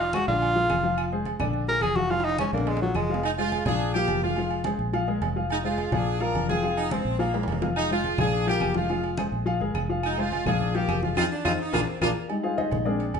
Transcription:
Already playing: F1
0.00 F4
0.13 G#3 F#4 G#4 C5, high conga, low timbale, low agogo, claves
0.27 A#1 D3 D4 F4 D5, high conga
0.41 high conga, low agogo
0.56 F3 F4 G#4
0.70 F1, high conga, low timbale, low agogo, claves
0.84 F3 F4 F5
0.98 high conga, low agogo, claves
1.12 G#3 G#4 C5, high conga
1.25 high conga, low timbale, low agogo
1.40 A#1 D3 D4 D5, low conga, low agogo, claves
1.53 high conga
1.67 F3 F4 G#4 A#4, high conga, low agogo
1.81 F1 G#4, high conga, low timbale, low agogo, claves
1.96 F3 F4 F#4 F5, high conga
2.10 F3 F4 F5, high conga, high timbale, low agogo
2.20 high timbale
2.25 D#4, high conga, low agogo
2.29 high timbale
2.38 G#3 C#4 G#4 C5, high conga, low agogo, claves
2.53 A#1 D3 A#3 D4 D5, high conga
2.58 low timbale
2.67 G#3, high conga, low timbale, low agogo
2.77 low timbale
2.81 F3 F#3 F4 G#4, high conga
2.95 F1 G#3, high conga, low agogo, claves
3.10 F3 F4 F5
3.14 low timbale
3.23 G#3 D#4, high conga, low agogo
3.37 G#3 F4 G#4 C5, high conga
3.52 high conga, low timbale, low agogo
3.66 A#1 F3 D4 F4 G#4 F5, low conga, low agogo
3.80 high conga
3.94 F3 A#3 F4 G4 F5, high conga, low agogo
4.08 F1, high conga, low timbale, low agogo
4.22 F3 G#3 F4 F5, high conga
4.36 F3 F4 F5, high conga, low agogo
4.50 high conga, low agogo
4.64 G#3 G#4 C5, high conga, low timbale, low agogo
4.79 A#1, high conga
4.93 F3 F4 F5, high conga, low agogo
5.08 G#3 G#4 A#4, high conga
5.21 F1, high conga, low timbale, low agogo
5.36 F3 F4 F5
5.50 G#3 D#4, high conga, low agogo
5.64 G#3 F4 G#4 C5, high conga
5.78 high conga, low timbale, low agogo
5.92 A#1 F3 D4 F4 G#4 F5, low conga, low agogo
6.06 high conga
6.20 F3 D4 F4 A#4 F5, high conga, low agogo
6.35 F1, high conga, low timbale, low agogo
6.49 F3 C4 F4 G#4 F5, high conga
6.63 F3 F4 F5, high conga, low agogo
6.77 D#4, high conga, low agogo
6.91 G#3 C4 G#4 C5, high conga, low timbale, low agogo
7.05 A#1, high conga
7.19 F3 A#3 F4 F5, high conga, low agogo
7.34 G#3 G#4 A#4, high conga, high timbale
7.43 high timbale
7.48 F1 A#3, high conga, low agogo
7.52 low timbale
7.62 F3 F4 F5, high conga, low timbale
7.76 G#3 D#4, high conga, low agogo, claves
7.90 G#3 F4 G#4 C5, high conga
8.04 high conga, low timbale, low agogo
8.18 A#1 F3 D4 F4 G#4 F5, low conga, low agogo, claves
8.32 high conga
8.46 F3 A#3 F4 G4 F5, high conga, low agogo
8.60 F1, high conga, low timbale, low agogo, claves
8.74 F3 G#3 F4 F5, high conga
8.89 F3 F4 F5, high conga, low agogo
9.03 high conga, low agogo
9.17 G#3 G#4 C5, high conga, low timbale, low agogo, claves
9.32 A#1, high conga
9.45 F3 F4 F5, high conga, low agogo
9.60 G1 G#3 G#4 A#4, high conga
9.74 F1, high conga, low timbale, low agogo, claves
9.89 F3 F4 F5
10.03 G#3 D#4, high conga, low agogo, claves
10.18 G#3 F4 G#4 C5, high conga
10.32 high conga, low timbale, low agogo
10.46 A#1 F3 D4 F4 G#4 F5, low conga, low agogo, claves
10.60 high conga, low conga
10.74 F3 A#3 F4 G4 F5, high conga, low agogo
10.88 F1, high conga, low timbale, low agogo, claves
11.03 F3 G#3 F4 F5, high conga
11.17 F2 C4 D#4 F4 G#4, high conga, high timbale, claves
11.32 D4
11.45 F2 C4 D#4 F4 G#4, high conga, high timbale, claves
11.61 D#4
11.73 A#1 A#3 D4 F4 G#4 A#4, high conga, high timbale, claves
11.87 C4
12.01 A#1 A#3 D4 F4 G#4 A#4, high conga, high timbale, claves
12.28 G3 G#3 D#4, high conga, low agogo
12.43 F4 G#4 C5 F5, high conga
12.58 D#4 G#4 C5 D#5, high conga, low timbale, low agogo
12.71 A#1, low conga, low agogo
12.85 G#3 C4 D4 G#4 A#4 D5, high conga
13.00 high conga, low agogo
13.14 F1, high conga, low timbale, low agogo

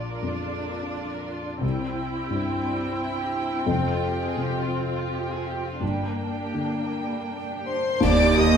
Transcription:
Already playing: A#1 D4 F4 D5
0.07 A#4
0.22 F2 F4
0.44 D4
0.60 A#3
0.79 D4
0.94 F4
1.10 A#4
1.29 F4
1.45 D4
1.61 C2 C3 G3 C4 E4 G5
1.81 C4
1.99 E4
2.15 G4
2.30 G2 E4
2.50 C4
2.68 G3
2.86 C4
3.02 E4
3.21 G4
3.38 E4
3.55 C4
3.66 F1 F2 C4 F4
3.89 F4
4.05 G4
4.24 G#4
4.37 C3
4.42 G4
4.59 F4
4.79 C4
4.94 F4
5.11 G4
5.28 G#4
5.46 G4
5.65 F4
5.80 G1 G2 A#3 D4
5.84 G3 G5
6.03 A#3
6.22 D4
6.39 G4
6.54 D3
6.59 D4
6.77 A#3
6.96 G3
7.12 A#3
7.32 D4
7.50 G4
7.66 D4 C5 C6
7.87 A#3
8.00 D#2 A#3 G4 D5 D6, concert bass drum, crash
8.37 G4 D#5 D#6

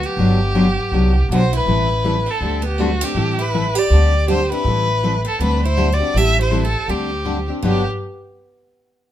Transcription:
0.03 B3 G4
0.17 G1 D3 F#3 B3 D4 G4
0.55 D3 F#3 B3 D4 G4
0.92 C2 D3 F#3 B3 D4 G4
1.29 B1 D3 F#3 B3 D4 F#4 G4
1.34 C5
1.53 E4 B4
1.66 A1 E3 G3 C4 E4 A4
2.04 E3 G3 C4 E4 A4
2.26 C4
2.30 A4
2.41 D2 D3 G3 C4 D4 G4
2.62 B3
2.68 G4
2.78 D3 G3 A3 C4 D4 F#4 G4
3.01 C4 D4 G4
3.15 A1 E3 G3 C4 E4 A4
3.39 E4 B4
3.54 E3 G3 C4 E4 A4
3.75 G4 D5
3.90 D2 D3 G3 C4 D4 G4
4.28 D3 G3 C4 D4 G4 C5
4.52 C4 D4 E4 G4 B4
4.65 A1 E3 G3 C4 E4 A4
5.03 E3 G3 C4 E4 A4
5.25 C4 A4
5.40 D2 D3 G3 C4 D4 G4 B4
5.65 E4 C5
5.77 D3 G3 C4 D4 G4
5.92 F#4 D5
6.00 C4 D4 G4
6.14 A1 E3 G3 C4 E4 G4 A4 E5
6.41 E4 C5
6.51 E3 G3 C4 E4 A4
6.65 C4 A4
6.88 D2 D3 G3 C4 D4 G4
7.25 D3 G3 C4 D4 G4
7.48 C4 D4 G4
7.63 G1 G2 D3 F#3 B3 D4 G4
7.67 G4

